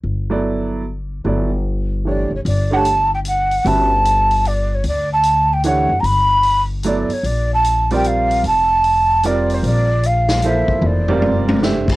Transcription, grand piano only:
0, 0, Header, 1, 2, 480
1, 0, Start_track
1, 0, Tempo, 399202
1, 57, Time_signature, 3, 2, 24, 8
1, 14381, End_track
2, 0, Start_track
2, 0, Title_t, "Grand piano"
2, 0, Program_c, 0, 0
2, 359, Note_on_c, 0, 54, 58
2, 362, Note_on_c, 0, 59, 51
2, 363, Note_on_c, 0, 64, 54
2, 373, Note_on_c, 0, 69, 52
2, 373, Note_on_c, 0, 74, 61
2, 979, Note_off_c, 0, 54, 0
2, 981, Note_off_c, 0, 59, 0
2, 982, Note_off_c, 0, 64, 0
2, 986, Note_off_c, 0, 74, 0
2, 987, Note_off_c, 0, 69, 0
2, 1495, Note_on_c, 0, 59, 46
2, 1502, Note_on_c, 0, 54, 53
2, 1506, Note_on_c, 0, 64, 49
2, 1509, Note_on_c, 0, 69, 49
2, 1523, Note_on_c, 0, 74, 57
2, 1780, Note_off_c, 0, 59, 0
2, 1783, Note_off_c, 0, 54, 0
2, 1785, Note_off_c, 0, 64, 0
2, 1787, Note_off_c, 0, 69, 0
2, 1793, Note_off_c, 0, 74, 0
2, 2464, Note_on_c, 0, 52, 39
2, 2476, Note_on_c, 0, 57, 38
2, 2486, Note_on_c, 0, 62, 40
2, 2486, Note_on_c, 0, 67, 38
2, 2490, Note_on_c, 0, 73, 44
2, 2745, Note_off_c, 0, 52, 0
2, 2751, Note_off_c, 0, 57, 0
2, 2756, Note_off_c, 0, 62, 0
2, 2756, Note_off_c, 0, 67, 0
2, 2758, Note_off_c, 0, 73, 0
2, 3253, Note_on_c, 0, 57, 63
2, 3268, Note_on_c, 0, 62, 61
2, 3274, Note_on_c, 0, 73, 64
2, 3279, Note_on_c, 0, 67, 60
2, 3286, Note_on_c, 0, 78, 76
2, 3405, Note_off_c, 0, 57, 0
2, 3412, Note_off_c, 0, 62, 0
2, 3415, Note_off_c, 0, 73, 0
2, 3418, Note_off_c, 0, 67, 0
2, 3421, Note_off_c, 0, 78, 0
2, 4386, Note_on_c, 0, 55, 49
2, 4389, Note_on_c, 0, 61, 45
2, 4393, Note_on_c, 0, 66, 46
2, 4398, Note_on_c, 0, 71, 49
2, 4406, Note_on_c, 0, 76, 54
2, 4667, Note_off_c, 0, 55, 0
2, 4669, Note_off_c, 0, 61, 0
2, 4671, Note_off_c, 0, 66, 0
2, 4673, Note_off_c, 0, 71, 0
2, 4677, Note_off_c, 0, 76, 0
2, 6786, Note_on_c, 0, 52, 60
2, 6786, Note_on_c, 0, 57, 55
2, 6790, Note_on_c, 0, 62, 55
2, 6793, Note_on_c, 0, 67, 49
2, 6809, Note_on_c, 0, 73, 69
2, 7069, Note_off_c, 0, 52, 0
2, 7069, Note_off_c, 0, 57, 0
2, 7071, Note_off_c, 0, 62, 0
2, 7073, Note_off_c, 0, 67, 0
2, 7081, Note_off_c, 0, 73, 0
2, 8230, Note_on_c, 0, 54, 60
2, 8238, Note_on_c, 0, 59, 50
2, 8239, Note_on_c, 0, 64, 57
2, 8245, Note_on_c, 0, 69, 53
2, 8255, Note_on_c, 0, 74, 65
2, 8512, Note_off_c, 0, 54, 0
2, 8516, Note_off_c, 0, 59, 0
2, 8516, Note_off_c, 0, 64, 0
2, 8519, Note_off_c, 0, 69, 0
2, 8525, Note_off_c, 0, 74, 0
2, 9510, Note_on_c, 0, 55, 67
2, 9516, Note_on_c, 0, 60, 62
2, 9518, Note_on_c, 0, 65, 58
2, 9523, Note_on_c, 0, 70, 61
2, 9526, Note_on_c, 0, 74, 76
2, 10120, Note_off_c, 0, 55, 0
2, 10123, Note_off_c, 0, 60, 0
2, 10124, Note_off_c, 0, 65, 0
2, 10127, Note_off_c, 0, 70, 0
2, 10128, Note_off_c, 0, 74, 0
2, 11106, Note_on_c, 0, 55, 62
2, 11118, Note_on_c, 0, 60, 56
2, 11124, Note_on_c, 0, 65, 54
2, 11124, Note_on_c, 0, 70, 55
2, 11131, Note_on_c, 0, 74, 73
2, 11836, Note_off_c, 0, 55, 0
2, 11842, Note_off_c, 0, 60, 0
2, 11845, Note_off_c, 0, 65, 0
2, 11845, Note_off_c, 0, 70, 0
2, 11849, Note_off_c, 0, 74, 0
2, 12556, Note_on_c, 0, 53, 57
2, 12562, Note_on_c, 0, 58, 51
2, 12565, Note_on_c, 0, 64, 50
2, 12570, Note_on_c, 0, 72, 64
2, 12574, Note_on_c, 0, 69, 50
2, 13278, Note_off_c, 0, 53, 0
2, 13281, Note_off_c, 0, 58, 0
2, 13282, Note_off_c, 0, 64, 0
2, 13285, Note_off_c, 0, 72, 0
2, 13287, Note_off_c, 0, 69, 0
2, 13326, Note_on_c, 0, 55, 74
2, 13334, Note_on_c, 0, 60, 70
2, 13336, Note_on_c, 0, 65, 67
2, 13344, Note_on_c, 0, 70, 67
2, 13347, Note_on_c, 0, 74, 86
2, 13941, Note_off_c, 0, 55, 0
2, 13944, Note_off_c, 0, 60, 0
2, 13946, Note_off_c, 0, 65, 0
2, 13950, Note_off_c, 0, 70, 0
2, 13951, Note_off_c, 0, 74, 0
2, 13963, Note_on_c, 0, 57, 58
2, 13968, Note_on_c, 0, 62, 52
2, 13984, Note_on_c, 0, 67, 50
2, 13985, Note_on_c, 0, 72, 53
2, 13995, Note_on_c, 0, 76, 66
2, 14251, Note_off_c, 0, 57, 0
2, 14253, Note_off_c, 0, 62, 0
2, 14261, Note_off_c, 0, 67, 0
2, 14262, Note_off_c, 0, 72, 0
2, 14267, Note_off_c, 0, 76, 0
2, 14381, End_track
0, 0, End_of_file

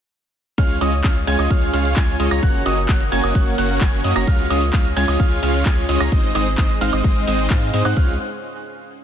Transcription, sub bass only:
0, 0, Header, 1, 2, 480
1, 0, Start_track
1, 0, Key_signature, -5, "major"
1, 0, Tempo, 461538
1, 604, Time_signature, 4, 2, 24, 8
1, 9401, End_track
2, 0, Start_track
2, 0, Title_t, "Sub bass"
2, 0, Program_c, 0, 38
2, 605, Note_on_c, 0, 37, 100
2, 821, Note_off_c, 0, 37, 0
2, 844, Note_on_c, 0, 37, 102
2, 1061, Note_off_c, 0, 37, 0
2, 1085, Note_on_c, 0, 37, 97
2, 1301, Note_off_c, 0, 37, 0
2, 1324, Note_on_c, 0, 37, 102
2, 1421, Note_off_c, 0, 37, 0
2, 1444, Note_on_c, 0, 37, 96
2, 1540, Note_off_c, 0, 37, 0
2, 1565, Note_on_c, 0, 37, 100
2, 1781, Note_off_c, 0, 37, 0
2, 1804, Note_on_c, 0, 37, 98
2, 2021, Note_off_c, 0, 37, 0
2, 2045, Note_on_c, 0, 37, 100
2, 2261, Note_off_c, 0, 37, 0
2, 2284, Note_on_c, 0, 37, 100
2, 2380, Note_off_c, 0, 37, 0
2, 2404, Note_on_c, 0, 37, 95
2, 2501, Note_off_c, 0, 37, 0
2, 2525, Note_on_c, 0, 30, 98
2, 2741, Note_off_c, 0, 30, 0
2, 2765, Note_on_c, 0, 30, 103
2, 2981, Note_off_c, 0, 30, 0
2, 3005, Note_on_c, 0, 30, 93
2, 3221, Note_off_c, 0, 30, 0
2, 3244, Note_on_c, 0, 30, 102
2, 3340, Note_off_c, 0, 30, 0
2, 3364, Note_on_c, 0, 30, 97
2, 3460, Note_off_c, 0, 30, 0
2, 3485, Note_on_c, 0, 30, 98
2, 3701, Note_off_c, 0, 30, 0
2, 3724, Note_on_c, 0, 30, 98
2, 3940, Note_off_c, 0, 30, 0
2, 3965, Note_on_c, 0, 30, 101
2, 4181, Note_off_c, 0, 30, 0
2, 4204, Note_on_c, 0, 42, 99
2, 4301, Note_off_c, 0, 42, 0
2, 4325, Note_on_c, 0, 30, 99
2, 4421, Note_off_c, 0, 30, 0
2, 4445, Note_on_c, 0, 37, 99
2, 4661, Note_off_c, 0, 37, 0
2, 4684, Note_on_c, 0, 37, 100
2, 4901, Note_off_c, 0, 37, 0
2, 4925, Note_on_c, 0, 37, 98
2, 5141, Note_off_c, 0, 37, 0
2, 5164, Note_on_c, 0, 37, 103
2, 5261, Note_off_c, 0, 37, 0
2, 5284, Note_on_c, 0, 37, 97
2, 5381, Note_off_c, 0, 37, 0
2, 5405, Note_on_c, 0, 37, 97
2, 5621, Note_off_c, 0, 37, 0
2, 5644, Note_on_c, 0, 37, 97
2, 5861, Note_off_c, 0, 37, 0
2, 5885, Note_on_c, 0, 37, 98
2, 6101, Note_off_c, 0, 37, 0
2, 6124, Note_on_c, 0, 37, 101
2, 6220, Note_off_c, 0, 37, 0
2, 6244, Note_on_c, 0, 37, 99
2, 6340, Note_off_c, 0, 37, 0
2, 6365, Note_on_c, 0, 32, 99
2, 6581, Note_off_c, 0, 32, 0
2, 6605, Note_on_c, 0, 32, 100
2, 6821, Note_off_c, 0, 32, 0
2, 6845, Note_on_c, 0, 32, 97
2, 7061, Note_off_c, 0, 32, 0
2, 7085, Note_on_c, 0, 32, 105
2, 7181, Note_off_c, 0, 32, 0
2, 7204, Note_on_c, 0, 32, 100
2, 7301, Note_off_c, 0, 32, 0
2, 7325, Note_on_c, 0, 32, 100
2, 7541, Note_off_c, 0, 32, 0
2, 7565, Note_on_c, 0, 32, 97
2, 7781, Note_off_c, 0, 32, 0
2, 7805, Note_on_c, 0, 44, 100
2, 8021, Note_off_c, 0, 44, 0
2, 8045, Note_on_c, 0, 44, 105
2, 8141, Note_off_c, 0, 44, 0
2, 8165, Note_on_c, 0, 44, 98
2, 8261, Note_off_c, 0, 44, 0
2, 8285, Note_on_c, 0, 37, 100
2, 8508, Note_off_c, 0, 37, 0
2, 9401, End_track
0, 0, End_of_file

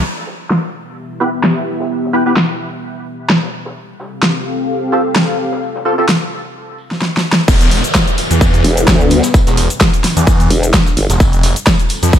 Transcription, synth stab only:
0, 0, Header, 1, 2, 480
1, 0, Start_track
1, 0, Tempo, 465116
1, 40, Time_signature, 4, 2, 24, 8
1, 12581, End_track
2, 0, Start_track
2, 0, Title_t, "Synth stab"
2, 0, Program_c, 0, 62
2, 1241, Note_on_c, 0, 59, 78
2, 1241, Note_on_c, 0, 64, 67
2, 1241, Note_on_c, 0, 67, 69
2, 1241, Note_on_c, 0, 71, 85
2, 1332, Note_off_c, 0, 59, 0
2, 1332, Note_off_c, 0, 64, 0
2, 1332, Note_off_c, 0, 67, 0
2, 1332, Note_off_c, 0, 71, 0
2, 2200, Note_on_c, 0, 71, 99
2, 2201, Note_on_c, 0, 59, 89
2, 2201, Note_on_c, 0, 64, 78
2, 2201, Note_on_c, 0, 67, 83
2, 2301, Note_off_c, 0, 59, 0
2, 2301, Note_off_c, 0, 64, 0
2, 2301, Note_off_c, 0, 67, 0
2, 2301, Note_off_c, 0, 71, 0
2, 2332, Note_on_c, 0, 67, 81
2, 2333, Note_on_c, 0, 59, 93
2, 2333, Note_on_c, 0, 64, 79
2, 2333, Note_on_c, 0, 71, 98
2, 2407, Note_off_c, 0, 59, 0
2, 2407, Note_off_c, 0, 64, 0
2, 2407, Note_off_c, 0, 67, 0
2, 2407, Note_off_c, 0, 71, 0
2, 5080, Note_on_c, 0, 60, 76
2, 5080, Note_on_c, 0, 65, 71
2, 5080, Note_on_c, 0, 69, 86
2, 5081, Note_on_c, 0, 67, 68
2, 5172, Note_off_c, 0, 60, 0
2, 5172, Note_off_c, 0, 65, 0
2, 5172, Note_off_c, 0, 67, 0
2, 5172, Note_off_c, 0, 69, 0
2, 6040, Note_on_c, 0, 60, 89
2, 6040, Note_on_c, 0, 65, 82
2, 6040, Note_on_c, 0, 67, 77
2, 6040, Note_on_c, 0, 69, 99
2, 6141, Note_off_c, 0, 60, 0
2, 6141, Note_off_c, 0, 65, 0
2, 6141, Note_off_c, 0, 67, 0
2, 6141, Note_off_c, 0, 69, 0
2, 6172, Note_on_c, 0, 60, 94
2, 6172, Note_on_c, 0, 65, 84
2, 6172, Note_on_c, 0, 67, 85
2, 6172, Note_on_c, 0, 69, 101
2, 6247, Note_off_c, 0, 60, 0
2, 6247, Note_off_c, 0, 65, 0
2, 6247, Note_off_c, 0, 67, 0
2, 6247, Note_off_c, 0, 69, 0
2, 12581, End_track
0, 0, End_of_file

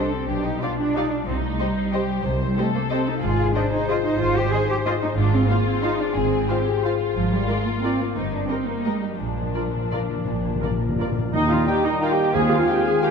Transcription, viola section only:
0, 0, Header, 1, 2, 480
1, 0, Start_track
1, 0, Tempo, 326797
1, 426, Time_signature, 3, 2, 24, 8
1, 10992, Tempo, 335758
1, 12432, Tempo, 357782
1, 15792, Tempo, 339175
1, 18779, End_track
2, 0, Start_track
2, 0, Title_t, "Viola section"
2, 0, Program_c, 0, 48
2, 921, Note_on_c, 0, 67, 46
2, 922, Note_on_c, 0, 74, 44
2, 1038, Note_off_c, 0, 67, 0
2, 1040, Note_off_c, 0, 74, 0
2, 1408, Note_on_c, 0, 67, 51
2, 1408, Note_on_c, 0, 74, 52
2, 1525, Note_off_c, 0, 67, 0
2, 1526, Note_off_c, 0, 74, 0
2, 2351, Note_on_c, 0, 72, 44
2, 2355, Note_on_c, 0, 67, 45
2, 2468, Note_off_c, 0, 72, 0
2, 2472, Note_off_c, 0, 67, 0
2, 2851, Note_on_c, 0, 72, 53
2, 2860, Note_on_c, 0, 67, 53
2, 2969, Note_off_c, 0, 72, 0
2, 2977, Note_off_c, 0, 67, 0
2, 3790, Note_on_c, 0, 72, 51
2, 3796, Note_on_c, 0, 67, 52
2, 3908, Note_off_c, 0, 72, 0
2, 3913, Note_off_c, 0, 67, 0
2, 4291, Note_on_c, 0, 67, 56
2, 4292, Note_on_c, 0, 72, 53
2, 4409, Note_off_c, 0, 67, 0
2, 4410, Note_off_c, 0, 72, 0
2, 5222, Note_on_c, 0, 72, 53
2, 5230, Note_on_c, 0, 68, 51
2, 5340, Note_off_c, 0, 72, 0
2, 5347, Note_off_c, 0, 68, 0
2, 5712, Note_on_c, 0, 68, 56
2, 5715, Note_on_c, 0, 72, 60
2, 5830, Note_off_c, 0, 68, 0
2, 5832, Note_off_c, 0, 72, 0
2, 6650, Note_on_c, 0, 72, 55
2, 6660, Note_on_c, 0, 68, 50
2, 6767, Note_off_c, 0, 72, 0
2, 6777, Note_off_c, 0, 68, 0
2, 7151, Note_on_c, 0, 72, 58
2, 7155, Note_on_c, 0, 68, 57
2, 7269, Note_off_c, 0, 72, 0
2, 7273, Note_off_c, 0, 68, 0
2, 8085, Note_on_c, 0, 65, 50
2, 8088, Note_on_c, 0, 72, 49
2, 8202, Note_off_c, 0, 65, 0
2, 8205, Note_off_c, 0, 72, 0
2, 8564, Note_on_c, 0, 65, 54
2, 8569, Note_on_c, 0, 72, 57
2, 8681, Note_off_c, 0, 65, 0
2, 8686, Note_off_c, 0, 72, 0
2, 9527, Note_on_c, 0, 65, 48
2, 9532, Note_on_c, 0, 72, 52
2, 9644, Note_off_c, 0, 65, 0
2, 9649, Note_off_c, 0, 72, 0
2, 10042, Note_on_c, 0, 65, 52
2, 10044, Note_on_c, 0, 72, 53
2, 10159, Note_off_c, 0, 65, 0
2, 10162, Note_off_c, 0, 72, 0
2, 10990, Note_on_c, 0, 70, 41
2, 10992, Note_on_c, 0, 65, 50
2, 11104, Note_off_c, 0, 70, 0
2, 11107, Note_off_c, 0, 65, 0
2, 11487, Note_on_c, 0, 65, 49
2, 11489, Note_on_c, 0, 70, 46
2, 11602, Note_off_c, 0, 65, 0
2, 11604, Note_off_c, 0, 70, 0
2, 12427, Note_on_c, 0, 67, 38
2, 12433, Note_on_c, 0, 70, 42
2, 12534, Note_off_c, 0, 67, 0
2, 12541, Note_off_c, 0, 70, 0
2, 12920, Note_on_c, 0, 67, 39
2, 12922, Note_on_c, 0, 70, 42
2, 13027, Note_off_c, 0, 67, 0
2, 13030, Note_off_c, 0, 70, 0
2, 13858, Note_on_c, 0, 65, 34
2, 13862, Note_on_c, 0, 70, 34
2, 13965, Note_off_c, 0, 65, 0
2, 13969, Note_off_c, 0, 70, 0
2, 14353, Note_on_c, 0, 70, 39
2, 14354, Note_on_c, 0, 65, 39
2, 14460, Note_off_c, 0, 70, 0
2, 14461, Note_off_c, 0, 65, 0
2, 15289, Note_on_c, 0, 70, 32
2, 15296, Note_on_c, 0, 65, 34
2, 15396, Note_off_c, 0, 70, 0
2, 15404, Note_off_c, 0, 65, 0
2, 15793, Note_on_c, 0, 65, 35
2, 15796, Note_on_c, 0, 70, 36
2, 15906, Note_off_c, 0, 65, 0
2, 15909, Note_off_c, 0, 70, 0
2, 16284, Note_on_c, 0, 63, 80
2, 16493, Note_off_c, 0, 63, 0
2, 16516, Note_on_c, 0, 65, 76
2, 16752, Note_on_c, 0, 67, 72
2, 16756, Note_off_c, 0, 65, 0
2, 16996, Note_off_c, 0, 67, 0
2, 17013, Note_on_c, 0, 63, 66
2, 17248, Note_off_c, 0, 63, 0
2, 17258, Note_on_c, 0, 65, 74
2, 17365, Note_off_c, 0, 65, 0
2, 17371, Note_on_c, 0, 67, 73
2, 17703, Note_off_c, 0, 67, 0
2, 17717, Note_on_c, 0, 68, 88
2, 17934, Note_off_c, 0, 68, 0
2, 17948, Note_on_c, 0, 65, 73
2, 18175, Note_on_c, 0, 67, 74
2, 18180, Note_off_c, 0, 65, 0
2, 18423, Note_off_c, 0, 67, 0
2, 18438, Note_on_c, 0, 68, 67
2, 18672, Note_off_c, 0, 68, 0
2, 18672, Note_on_c, 0, 67, 84
2, 18767, Note_off_c, 0, 67, 0
2, 18779, End_track
0, 0, End_of_file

